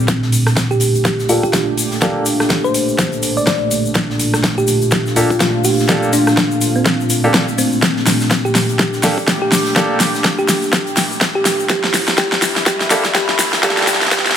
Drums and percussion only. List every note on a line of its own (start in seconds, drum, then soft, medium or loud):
0.08 kick loud
0.08 snare soft
0.08 closed hi-hat medium
0.08 shaker soft
0.22 snare soft
0.32 closed hi-hat medium
0.32 open hi-hat loud
0.32 shaker medium
0.46 cross-stick medium
0.46 snare soft
0.46 shaker soft
0.56 kick loud
0.56 snare loud
0.56 snare soft
0.56 closed hi-hat medium
0.56 shaker soft
0.71 shaker soft
0.80 closed hi-hat medium
0.80 open hi-hat medium
0.80 shaker medium
0.95 closed hi-hat soft
0.95 shaker soft
1.05 kick loud
1.05 snare soft
1.05 closed hi-hat medium
1.05 shaker soft
1.19 snare soft
1.19 shaker soft
1.29 closed hi-hat medium
1.29 open hi-hat loud
1.29 shaker medium
1.43 kick medium
1.43 closed hi-hat soft
1.43 shaker soft
1.53 kick loud
1.53 snare loud
1.53 snare soft
1.53 closed hi-hat medium
1.53 shaker soft
1.77 open hi-hat medium
1.77 shaker medium
1.91 snare soft
1.91 shaker soft
2.01 kick loud
2.01 snare soft
2.01 closed hi-hat medium
2.01 shaker medium
2.26 closed hi-hat medium
2.26 open hi-hat loud
2.26 shaker medium
2.40 cross-stick medium
2.40 snare soft
2.40 shaker soft
2.50 kick loud
2.50 snare loud
2.50 snare soft
2.50 closed hi-hat medium
2.50 shaker soft
2.65 shaker soft
2.74 closed hi-hat medium
2.74 open hi-hat medium
2.74 shaker medium
2.88 shaker soft
2.99 kick loud
2.99 snare medium
2.99 closed hi-hat medium
2.99 shaker medium
3.12 closed hi-hat soft
3.12 shaker soft
3.23 closed hi-hat medium
3.23 open hi-hat loud
3.23 shaker medium
3.37 shaker soft
3.47 kick loud
3.47 snare medium
3.47 snare loud
3.47 closed hi-hat medium
3.47 shaker soft
3.71 closed hi-hat medium
3.71 open hi-hat medium
3.71 shaker medium
3.85 shaker soft
3.94 kick loud
3.94 snare medium
3.94 closed hi-hat medium
3.94 shaker soft
4.10 snare medium
4.19 closed hi-hat medium
4.19 open hi-hat loud
4.19 shaker medium
4.34 cross-stick medium
4.34 snare medium
4.34 shaker soft
4.44 kick loud
4.44 snare medium
4.44 snare loud
4.44 closed hi-hat medium
4.44 shaker medium
4.58 shaker soft
4.67 closed hi-hat medium
4.67 open hi-hat loud
4.67 shaker medium
4.81 closed hi-hat soft
4.81 shaker soft
4.91 kick loud
4.91 snare medium
4.91 closed hi-hat medium
4.91 shaker medium
5.06 snare soft
5.06 shaker soft
5.16 closed hi-hat medium
5.16 open hi-hat loud
5.16 shaker medium
5.30 kick medium
5.30 closed hi-hat soft
5.30 shaker soft
5.40 kick loud
5.40 snare medium
5.40 snare loud
5.40 closed hi-hat medium
5.40 shaker medium
5.64 open hi-hat medium
5.64 shaker loud
5.79 snare soft
5.79 shaker soft
5.88 kick loud
5.88 snare medium
5.88 closed hi-hat medium
5.88 shaker medium
6.03 shaker soft
6.13 closed hi-hat medium
6.13 open hi-hat loud
6.13 shaker loud
6.27 cross-stick medium
6.27 snare soft
6.27 shaker soft
6.37 kick loud
6.37 snare medium
6.37 snare loud
6.37 closed hi-hat medium
6.37 shaker soft
6.51 shaker soft
6.61 closed hi-hat medium
6.61 open hi-hat loud
6.61 shaker medium
6.75 shaker soft
6.86 kick loud
6.86 snare medium
6.86 shaker medium
7.00 shaker soft
7.10 closed hi-hat medium
7.10 open hi-hat loud
7.10 shaker medium
7.24 shaker soft
7.33 kick loud
7.33 snare loud
7.33 snare medium
7.33 closed hi-hat medium
7.33 shaker medium
7.48 shaker soft
7.58 closed hi-hat medium
7.58 open hi-hat medium
7.58 shaker medium
7.72 shaker soft
7.82 kick loud
7.82 snare medium
7.82 closed hi-hat medium
7.82 shaker soft
7.97 snare soft
8.06 snare medium
8.06 closed hi-hat medium
8.06 open hi-hat loud
8.06 shaker medium
8.20 snare soft
8.20 shaker soft
8.30 kick loud
8.30 snare loud
8.30 snare medium
8.30 closed hi-hat medium
8.30 shaker medium
8.45 shaker soft
8.55 snare medium
8.55 closed hi-hat medium
8.55 open hi-hat medium
8.55 shaker medium
8.69 closed hi-hat soft
8.69 shaker soft
8.79 kick loud
8.79 snare medium
8.79 closed hi-hat medium
8.79 shaker soft
8.93 snare soft
8.93 shaker soft
9.03 snare medium
9.03 closed hi-hat medium
9.03 open hi-hat loud
9.03 shaker medium
9.18 kick medium
9.18 closed hi-hat soft
9.18 shaker soft
9.27 kick loud
9.27 snare loud
9.27 snare medium
9.27 closed hi-hat medium
9.27 shaker soft
9.52 snare medium
9.52 open hi-hat medium
9.52 shaker medium
9.66 snare soft
9.66 shaker soft
9.76 kick loud
9.76 snare medium
9.76 closed hi-hat medium
9.76 shaker soft
10.00 snare medium
10.00 closed hi-hat medium
10.00 open hi-hat loud
10.00 shaker medium
10.14 snare soft
10.14 shaker soft
10.24 kick loud
10.24 snare loud
10.24 snare medium
10.24 closed hi-hat loud
10.24 shaker soft
10.38 shaker soft
10.48 snare medium
10.48 closed hi-hat medium
10.48 open hi-hat medium
10.48 shaker medium
10.62 shaker soft
10.73 kick loud
10.73 snare medium
10.73 closed hi-hat medium
10.73 shaker soft
10.87 closed hi-hat soft
10.87 shaker soft
10.96 snare medium
10.96 closed hi-hat medium
10.96 open hi-hat loud
10.96 shaker medium
11.12 shaker soft
11.21 kick loud
11.21 snare medium
11.21 snare loud
11.21 closed hi-hat medium
11.21 shaker medium
11.45 snare medium
11.45 closed hi-hat medium
11.45 open hi-hat medium
11.45 shaker medium
11.60 shaker soft
11.69 kick loud
11.69 snare medium
11.69 closed hi-hat medium
11.69 shaker soft
11.84 snare medium
11.93 snare medium
11.93 closed hi-hat medium
11.93 open hi-hat loud
11.93 shaker medium
12.07 snare medium
12.07 snare soft
12.07 shaker soft
12.17 kick loud
12.17 snare medium
12.17 snare loud
12.17 closed hi-hat medium
12.17 shaker medium
12.32 snare medium
12.32 shaker soft
12.42 snare loud
12.42 closed hi-hat medium
12.42 open hi-hat medium
12.42 shaker medium
12.56 snare medium
12.56 closed hi-hat soft
12.56 shaker soft
12.66 kick loud
12.66 snare loud
12.66 closed hi-hat medium
12.66 shaker medium
12.81 snare medium
12.81 snare soft
12.81 shaker soft
12.90 snare loud
12.90 closed hi-hat medium
12.90 open hi-hat loud
12.90 shaker medium
13.04 kick medium
13.04 snare medium
13.04 closed hi-hat soft
13.04 shaker soft
13.14 kick loud
13.14 snare medium
13.14 snare loud
13.14 closed hi-hat medium
13.14 shaker soft
13.29 snare medium
13.39 snare loud
13.39 open hi-hat medium
13.39 shaker medium
13.53 snare medium
13.53 snare soft
13.53 shaker soft
13.63 kick loud
13.63 snare loud
13.63 closed hi-hat medium
13.63 shaker medium
13.70 snare medium
13.77 snare medium
13.77 shaker soft
13.82 snare medium
13.87 snare loud
13.87 closed hi-hat medium
13.87 open hi-hat loud
13.87 shaker loud
13.94 snare medium
14.01 snare medium
14.01 shaker soft
14.06 snare medium
14.11 kick loud
14.11 snare loud
14.11 closed hi-hat medium
14.11 shaker medium
14.19 snare medium
14.26 snare medium
14.26 shaker soft
14.31 snare medium